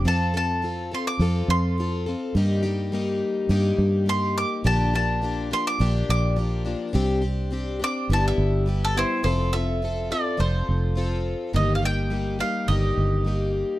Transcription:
<<
  \new Staff \with { instrumentName = "Mandolin" } { \time 4/4 \key f \major \tempo 4 = 104 a''8 a''4 c'''16 d'''8. c'''4 r8 | r2. c'''8 d'''8 | a''8 a''4 c'''16 d'''8. d'''4 r8 | r4. d'''8 a''16 e''4 a'16 <e' c''>8 |
c''8 e''4 d''8 c''4. r8 | ees''16. f''32 g''4 f''8 ees''4. r8 | }
  \new Staff \with { instrumentName = "Twelve-string acoustic guitar" } { \time 4/4 \key f \major <f c' f' a'>8 <c' f' a'>8 <f c' f' a'>8 <c' f' a'>8 <f c' f' a'>4 <f c' f' a'>8 <c' f' a'>8 | <g, ees g bes ees' g'>8 <g bes ees' g'>8 <g bes ees' g'>4 <g, ees g bes ees' g'>4 <g bes ees' g'>4 | <bes, d f bes d' g'>8 <f bes d' g'>8 <f bes d' g'>8 <f bes d' g'>8 <bes, d f bes d' g'>4 <f bes d' g'>8 <f bes d' g'>8 | <c g c' d' g'>8 <c' d' g'>8 <g c' d' g'>8 <c' d' g'>8 <g, d g b e' g'>4 <g b e' g'>8 <g b e' g'>8 |
<f c' f' a'>8 <c' f' a'>8 <f c' f' a'>8 <c' f' a'>8 <f c' f' a'>4 <f c' f' a'>4 | <g, ees g bes ees' g'>8 <g bes ees' g'>8 <g bes ees' g'>8 <g bes ees' g'>8 <g, ees g bes ees' g'>4 <g bes ees' g'>4 | }
  \new Staff \with { instrumentName = "Fingered electric bass" } { \clef bass \time 4/4 \key f \major f,2 f,8 f,4. | g,2 g,8 g,4. | bes,,2 bes,,8 bes,,4. | c,2 g,,8 g,,4. |
f,,2 f,,8 f,,4. | g,,2 g,,8 g,,4. | }
>>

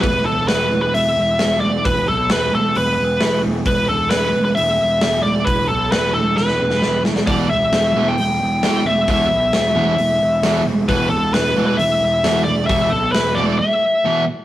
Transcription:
<<
  \new Staff \with { instrumentName = "Lead electric guitar" } { \time 4/4 \key e \minor \tempo 4 = 133 b'8 a'8 b'8. b'16 e''4. d''8 | b'8 a'8 b'8 a'8 b'4. r8 | b'8 a'8 b'8. b'16 e''4. d''8 | b'8 a'8 b'8 a'8 b'4. r8 |
d''8 e''4~ e''16 g''4~ g''16 g''8 e''8 | e''2.~ e''8 r8 | b'8 a'8 b'8. b'16 e''4. d''8 | e''8 a'8 b'8 d''8 e''4. r8 | }
  \new Staff \with { instrumentName = "Distorted electric guitar" } { \clef bass \time 4/4 \key e \minor r1 | r1 | r1 | r1 |
<e, b, e>8 r4 <e, b, e>8 r4 <e, b, e>8 r8 | <e, b, e>8 r4 <e, b, e>8 r4 <e, b, e>8 r8 | <e, b, e>8 r4 <e, b, e>8 r4 <e, b, e>8 r8 | <e, b, e>8 r4 <e, b, e>8 r4 <e, b, e>8 r8 | }
  \new Staff \with { instrumentName = "Overdriven electric guitar" } { \clef bass \time 4/4 \key e \minor r1 | r1 | r1 | r1 |
<e, b, e>8 r4 <e, b, e>8 r4 <e, b, e>8 r8 | <e, b, e>8 r4 <e, b, e>8 r4 <e, b, e>8 r8 | <e, b, e>8 r4 <e, b, e>8 r4 <e, b, e>8 r8 | <e, b, e>8 r4 <e, b, e>8 r4 <e, b, e>8 r8 | }
  \new Staff \with { instrumentName = "Picked electric bass" } { \clef bass \time 4/4 \key e \minor e,,8 e,,8 e,,8 e,,8 e,,8 e,,8 e,,8 e,,8 | e,,8 b,,8 e,,8 e,,8 e,,8 e,,8 e,,8 e,,8 | e,,8 e,,8 e,,8 e,,8 e,,8 e,,8 e,,8 e,,8 | e,,8 b,,8 e,,8 e,,8 e,,8 e,,8 e,,8 e,,8 |
e,,8 e,,8 e,,8 e,,8 e,,8 e,,8 e,,8 e,,8 | e,,8 b,,8 e,,8 e,,8 e,,8 e,,8 e,,8 e,,8 | e,,8 e,,8 e,,8 e,,8 e,,8 e,,8 e,,8 e,,8 | e,,8 b,,8 e,,8 e,,8 r2 | }
  \new DrumStaff \with { instrumentName = "Drums" } \drummode { \time 4/4 <hho bd>4 <hho sn>4 hho4 <hho sn>4 | <hho bd>4 <hho sn>4 hho4 <hho sn>4 | <hho bd>4 <hho sn>4 hho4 <hho sn>4 | <hho bd>4 <hho sn>4 sn16 sn8 sn16 sn8 sn16 sn16 |
<hho bd>4 <hho sn>4 hho4 <hho sn>4 | <hho bd>4 <hho sn>4 hho4 <hho sn>4 | <hho bd>4 <hho sn>4 hho4 <hho sn>4 | <hho bd>4 <hho sn>4 r4 r4 | }
>>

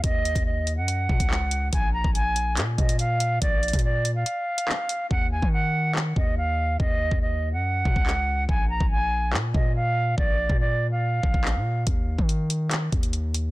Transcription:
<<
  \new Staff \with { instrumentName = "Flute" } { \time 4/4 \key bes \phrygian \tempo 4 = 142 ees''4 ees''8. ges''2~ ges''16 | aes''8 bes''8 aes''4 r8 ees''8 f''4 | d''4 d''8. f''2~ f''16 | ges''8 aes''8 ges''4 r8 ees''8 f''4 |
ees''4 ees''8. ges''2~ ges''16 | aes''8 bes''8 aes''4 r8 ees''8 f''4 | d''4 d''8. f''2~ f''16 | r1 | }
  \new Staff \with { instrumentName = "808-style bass" } { \clef bass \time 4/4 \key bes \phrygian ees,8. ees,4 ges,8. bes,16 des,4~ des,16 | bes,,8. bes,,4~ bes,,16 bes,8 bes,4. | bes,,8. bes,4~ bes,16 r2 | ees,8. ees4.~ ees16 ees,4. |
ees,8. ees,4 ges,8. bes,16 des,4~ des,16 | bes,,8. bes,,4~ bes,,16 bes,8 bes,4. | bes,,8. bes,4.~ bes,16 bes,,16 bes,,8 bes,8. | ees,8. ees4.~ ees16 ees,4. | }
  \new DrumStaff \with { instrumentName = "Drums" } \drummode { \time 4/4 <hh bd>8 hh16 <hh bd>16 r8 hh8 hh8 bd16 <hh bd>16 hc8 hh8 | <hh bd>8. bd16 hh8 hh8 <hc hh>8 <hh bd>16 hh16 hh8 hh8 | <hh bd>8 hh32 hh32 <hh bd>32 hh32 r8 hh8 hh8. hh16 hc8 hh8 | bd8. bd16 r4 hc8 bd8 r4 |
bd8. bd16 r4 r8 bd16 bd16 hc4 | bd8. bd16 r4 hc8 bd8 r4 | bd8. bd16 r4 r8 bd16 bd16 hc4 | <hh bd>8. bd16 hh8 hh8 <hc hh>8 <hh bd>16 hh16 hh8 hh8 | }
>>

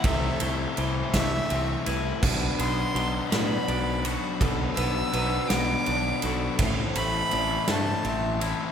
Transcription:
<<
  \new Staff \with { instrumentName = "Violin" } { \time 6/8 \key a \dorian \tempo 4. = 55 e''4 r8 e''4 r8 | r8 c'''4 b''4. | r8 e'''4 d'''4. | r8 b''4 a''4 r8 | }
  \new Staff \with { instrumentName = "Clean electric guitar" } { \time 6/8 \key a \dorian a'8 c''8 c''4 e''8 b'8 | b4 c'''8 b'8 d''4 | a'8 b'8 b'4 d''8 a'8 | c''4 d''8 c''8 e''4 | }
  \new Staff \with { instrumentName = "Clean electric guitar" } { \time 6/8 \key a \dorian <c e a c' e'>8 a8 e8 a8 c'8 e'8 | b,8 b8 fis8 b8 d'8 fis'8 | b,8 b8 fis8 b8 d'8 fis'8 | a,8 a8 e8 a8 c'8 e'8 | }
  \new Staff \with { instrumentName = "Distorted electric guitar" } { \time 6/8 \key a \dorian <c e a e'>8 <e a e'>8 <c e a e'>8 <c e a e'>4 <e a e'>8 | <b, fis b d'>8 <fis b d'>8 <b, fis b d'>8 <b, fis b d'>4 <fis b d'>8 | <b, fis b d'>8 <fis b d'>8 <b, fis b d'>8 <b, fis b d'>4 <fis b d'>8 | <a, e a c' e'>8 <a c' e'>8 <e a c' e'>8 <a, e a c' e'>4 <a c' e'>8 | }
  \new Staff \with { instrumentName = "Fingered electric bass" } { \clef bass \time 6/8 \key a \dorian c,8 c,8 c,8 c,8 c,8 c,8 | b,,8 b,,8 b,,8 a,8 b,,4 | b,,8 b,,8 b,,8 b,,8 b,,8 b,,8 | a,,8 a,,8 a,,8 g,8 a,,4 | }
  \new DrumStaff \with { instrumentName = "Drums" } \drummode { \time 6/8 <bd cymr>8 cymr8 cymr8 <bd cymr sn>8 cymr8 cymr8 | <cymc bd>8 cymr8 cymr8 <cymr sn>8 cymr8 cymr8 | <bd cymr>8 cymr8 cymr8 <cymr sn>8 cymr8 cymr8 | <bd cymr>8 cymr8 cymr8 <cymr sn>8 cymr8 cymr8 | }
>>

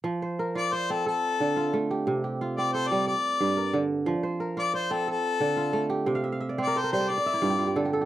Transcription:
<<
  \new Staff \with { instrumentName = "Harmonica" } { \time 12/8 \key f \major \tempo 4. = 119 r4. d''8 c''8 a'8 a'2~ a'8 r8 | r4. d''8 c''8 d''8 d''2~ d''8 r8 | r4. d''8 c''8 a'8 a'2~ a'8 r8 | r4. d''8 c''8 c''8 d''2~ d''8 r8 | }
  \new Staff \with { instrumentName = "Kora" } { \time 12/8 \key f \major << { r1. | r1. | r1. | g''16 f''16 e''16 f''16 e''16 d''16 c''16 bes'16 a'16 bes'16 c''16 d''16 c''16 d''16 e''16 e'16 f'16 g'16 f'16 g'16 a'16 g'16 a'16 g'16 | } \\ { r8 c''8 bes'4 d''4 a'4. f'4 g'8~ | g'8 g'8 f'4 a'4 d''4. bes'4. | r8 c''8 bes'4 d''4 a'4. f'4 g'8~ | g'8 r1 r4. | } >> }
  \new Staff \with { instrumentName = "Kora" } { \clef bass \time 12/8 \key f \major f4 r8 f'4 c'8 r4 d4 a4 | c4 r8 c'4 g8 r4 g,4 d4 | f4 r8 f'4 c'8 r4 d4 a4 | c4 r8 c'4 g8 r4 g,4 d4 | }
>>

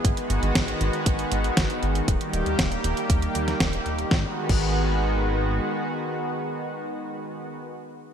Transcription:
<<
  \new Staff \with { instrumentName = "Analog synth pad" } { \time 4/4 \key gis \minor \tempo 4 = 118 << { <gis b fis'>1 | <g ais g'>1 | <dis gis b fis'>1~ | <dis gis b fis'>1 | } \\ { dis1~ | dis1 | r1 | r1 | } >> }
  \new Staff \with { instrumentName = "Analog synth bass" } { \clef bass \time 4/4 \key gis \minor gis,,16 r16 gis,,16 gis,,16 gis,,16 r16 gis,,16 r16 gis,,16 r16 gis,,16 r16 gis,,16 r16 gis,,16 r16 | dis,,16 r16 dis,,16 dis,,16 dis,,16 r16 dis,,16 r16 dis,,16 r16 dis,16 r16 dis,,16 r16 dis,,16 r16 | gis,,16 r8 gis,,2~ gis,,16 r4 | r1 | }
  \new DrumStaff \with { instrumentName = "Drums" } \drummode { \time 4/4 <hh bd>16 hh16 hh16 hh16 <hh bd sn>16 hh16 hh16 hh16 <hh bd>16 hh16 hh16 hh16 <hh bd sn>16 hh16 hh16 hh16 | <hh bd>16 hh16 hh16 hh16 <hh bd sn>16 hh16 hh16 hh16 <hh bd>16 hh16 hh16 <hh sn>16 <hh bd sn>16 hh16 hh16 hh16 | <bd sn>8. <cymc bd>16 r4 r4 r4 | r4 r4 r4 r4 | }
>>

